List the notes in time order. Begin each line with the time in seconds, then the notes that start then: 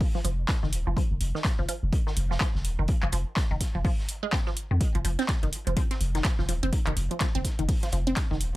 0.00 kick, open hi-hat
0.15 F3, snare
0.24 F1 F3, closed hi-hat, open hi-hat
0.49 kick, snare, clap, closed hi-hat
0.63 F1 D#3, snare
0.72 D#1, closed hi-hat, open hi-hat
0.87 F1 F3
0.97 F3, kick, closed hi-hat
1.11 F1
1.21 F1, closed hi-hat, open hi-hat
1.35 D#3, snare
1.44 kick, snare, clap, closed hi-hat
1.59 F1 F3
1.68 F3, closed hi-hat, open hi-hat
1.83 F1
1.92 kick, closed hi-hat
2.07 D#3, snare
2.16 F1, closed hi-hat, open hi-hat
2.31 F3, snare
2.40 F3, kick, snare, clap, closed hi-hat
2.55 F1, snare
2.65 D#1, closed hi-hat, open hi-hat
2.79 F1 D#3
2.88 kick, closed hi-hat
3.03 F1 F3, clap
3.12 F1 F3, closed hi-hat, open hi-hat
3.36 kick, snare, clap, closed hi-hat
3.51 F1 D#3
3.60 kick, snare, closed hi-hat, open hi-hat
3.75 F1 F3
3.85 F3, kick, open hi-hat
3.99 snare
4.09 closed hi-hat, open hi-hat
4.23 G#3
4.32 C4, kick, snare, clap, closed hi-hat
4.46 F3, snare
4.57 open hi-hat
4.71 F2 D#3
4.81 kick, closed hi-hat
4.95 F1 F3, closed hi-hat
5.05 F1 F3, closed hi-hat, open hi-hat
5.19 C4, snare, closed hi-hat
5.29 kick, snare, clap, closed hi-hat
5.43 F1 D#3, closed hi-hat
5.53 closed hi-hat, open hi-hat
5.67 F1 F3, closed hi-hat
5.77 F3, kick, closed hi-hat
5.91 C4, snare, closed hi-hat
6.00 F1, closed hi-hat, open hi-hat
6.15 D#3, snare, closed hi-hat
6.24 kick, snare, clap, closed hi-hat
6.39 F1 F3, snare
6.49 D#1 F3, closed hi-hat, open hi-hat
6.63 F1 C4, closed hi-hat
6.73 kick, closed hi-hat
6.87 F1 D#3, clap, closed hi-hat
6.97 F1, closed hi-hat, open hi-hat
7.11 F3, closed hi-hat
7.20 F3, kick, snare, clap, closed hi-hat
7.35 F1 C4, closed hi-hat
7.44 kick, snare, closed hi-hat, open hi-hat
7.59 F1 D#3, closed hi-hat
7.69 kick, closed hi-hat, open hi-hat
7.83 F3, snare, closed hi-hat
7.92 F1 F3, closed hi-hat, open hi-hat
8.07 C4, closed hi-hat
8.15 kick, snare, clap, closed hi-hat
8.31 F1 D#3, snare
8.41 D#1, closed hi-hat, open hi-hat